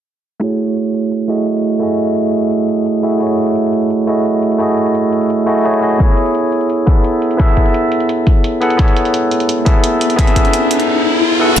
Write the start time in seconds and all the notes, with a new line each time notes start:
0.40 A3 E4 F#4 G#4, closed hi-hat
0.44 C#5
0.51 closed hi-hat
0.59 closed hi-hat
0.68 closed hi-hat
0.77 closed hi-hat
0.94 closed hi-hat
1.03 closed hi-hat
1.12 closed hi-hat
1.28 A3 E4 F#4 G#4 D#5, closed hi-hat
1.47 closed hi-hat
1.64 closed hi-hat
1.73 closed hi-hat
1.79 A3 E4 F#4 G#4, closed hi-hat
1.83 D#5
1.90 closed hi-hat
1.99 closed hi-hat
2.07 closed hi-hat
2.16 closed hi-hat
2.34 closed hi-hat
2.42 closed hi-hat
2.51 closed hi-hat
2.69 closed hi-hat
2.86 closed hi-hat
3.02 A3 E4 F#4 G#4 E5, closed hi-hat
3.12 closed hi-hat
3.19 A3 E4 F#4 G#4, closed hi-hat
3.23 C#5
3.30 closed hi-hat
3.38 closed hi-hat
3.47 closed hi-hat
3.56 closed hi-hat
3.73 closed hi-hat
3.82 closed hi-hat
3.90 closed hi-hat
4.07 A3 E4 F#4 G#4 D#5, closed hi-hat
4.25 closed hi-hat
4.43 closed hi-hat
4.52 closed hi-hat
4.58 A3 E4 F#4 G#4 D#5, closed hi-hat
4.69 closed hi-hat
4.78 closed hi-hat
4.86 closed hi-hat
4.95 closed hi-hat
5.13 closed hi-hat
5.21 closed hi-hat
5.30 closed hi-hat
5.46 A3 E4 F#4 G#4 D#5, closed hi-hat
5.64 A3 E4 F#4 G#4 C#5, closed hi-hat
5.81 A3 E4 F#4 G#4 D#5, closed hi-hat
5.91 closed hi-hat
5.98 B3 E4 G#4 A4 C#5, kick, closed hi-hat
6.09 closed hi-hat
6.17 closed hi-hat
6.26 closed hi-hat
6.35 closed hi-hat
6.52 closed hi-hat
6.61 closed hi-hat
6.70 closed hi-hat
6.86 B3 E4 G#4 A4 E5, kick, closed hi-hat
7.04 closed hi-hat
7.22 closed hi-hat
7.31 closed hi-hat
7.37 B3 E4 G#4 A4, kick, closed hi-hat
7.41 E5
7.48 closed hi-hat
7.57 kick, closed hi-hat
7.66 closed hi-hat
7.74 closed hi-hat
7.92 closed hi-hat
8.00 closed hi-hat
8.09 closed hi-hat
8.27 kick, closed hi-hat
8.44 closed hi-hat
8.61 B3 E4 G#4 A4 F#5, closed hi-hat
8.70 closed hi-hat
8.77 B3 E4 G#4 A4, kick, closed hi-hat, riser
8.81 C#5
8.88 closed hi-hat
8.97 closed hi-hat
9.05 closed hi-hat
9.14 closed hi-hat
9.31 closed hi-hat
9.40 closed hi-hat
9.49 closed hi-hat
9.65 B3 E4 G#4 A4 E5, kick, closed hi-hat
9.84 closed hi-hat
10.01 closed hi-hat
10.10 closed hi-hat
10.16 B3 E4 G#4 A4, kick, closed hi-hat
10.20 E5
10.27 closed hi-hat
10.36 kick, closed hi-hat
10.45 closed hi-hat
10.53 closed hi-hat
10.71 closed hi-hat
10.80 closed hi-hat
11.40 B3 E4 G#4 A4 F#5
11.56 A3